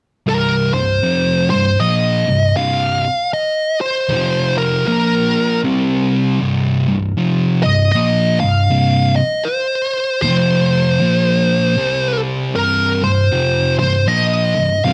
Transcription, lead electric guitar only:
0.28 A#4
0.74 C5
1.50 C5
1.80 D#5
2.56 F5
3.33 D#5
3.81 C5
4.58 A#4
4.87 A#4
7.63 D#5
7.92 D#5
8.40 F5
9.16 D#5
9.45 C5
10.22 C5
12.55 A#4
13.04 C5
13.79 C5
14.08 D#5
14.85 F5

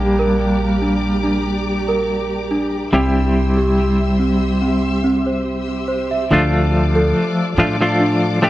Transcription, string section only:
Already playing: G4 D5 A#5 D6
2.93 E5 C6 E6
6.31 F4 D5 A5 D6

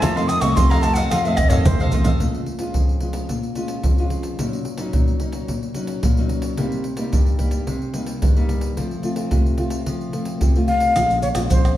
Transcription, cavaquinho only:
0.02 F4 A4 D#5 F5
0.16 A4 D#5 F5
0.41 A4 D#5 F5
0.57 F4 A4 D#5 F5
0.71 A4 D#5 F5
0.84 muted cavaquinho stroke
0.96 A4 D#5 F5
1.12 F4 A4 D#5 F5
1.27 A4 D#5 F5
1.38 muted cavaquinho stroke
1.51 A4 D#5 F5
1.80 A4 D#5 F5
1.93 F4 A4 D#5 F5
2.05 A4 D#5 F5

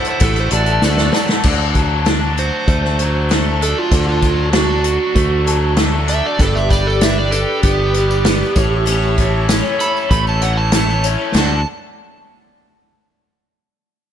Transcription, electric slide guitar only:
0.10 C5
0.24 A4
0.40 C5
0.53 D5
2.39 C5
3.63 A4
3.78 F4
4.09 F4
4.53 F#4
6.09 E5
6.26 D5
6.41 A4
6.55 E5
6.71 D5
6.87 A4
7.02 E5
7.18 D5
7.31 A4
7.64 G4
9.81 B5
10.11 B5
10.29 A5
10.42 F#5
10.57 A5
10.75 A5
11.38 A5

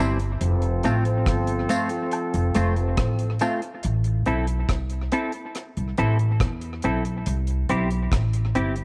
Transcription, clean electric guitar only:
0.00 G3 C4 E4
0.84 A3 C4 F4
1.69 A3 C4 F4
2.55 A3 C4 F4
3.41 A3 C4 F4
4.26 C4 E4 A4
5.12 C4 E4 A4
5.98 C4 E4 A4
6.84 C4 E4 A4
7.70 C4 E4 G4
8.55 C4 E4 G4

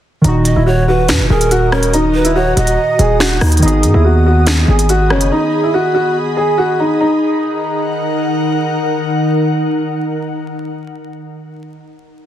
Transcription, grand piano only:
0.25 D#4
0.56 E4
0.66 F#4
0.88 F#4
1.30 G#4
1.51 F#4
1.72 C#4
1.94 D#4
2.25 E4
2.36 F#4
2.57 F#4
2.99 G#4
3.20 F#4
3.42 D#4
3.62 D#4
3.94 E4
4.05 F#4
4.26 F#4
4.69 G#4
4.90 F#4
5.11 C#4
5.32 D#4
5.64 E4
5.74 F#4
5.94 F#4
6.37 G#4
6.58 F#4
6.80 D#4
7.01 D#4

